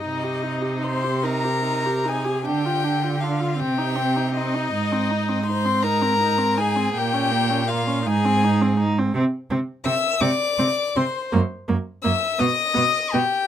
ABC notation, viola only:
X:1
M:6/8
L:1/16
Q:3/8=54
K:Cm
V:1 name="Viola"
E G E G E G E G E G E G | D F D F D F C E C E C E | E C E C E C E C E C E C | B, _D B, D B, D E C E C E C |
[K:Clyd] C2 C2 C2 C2 C2 C2 | ^A,2 A,2 A,2 B,2 B,2 B,2 |]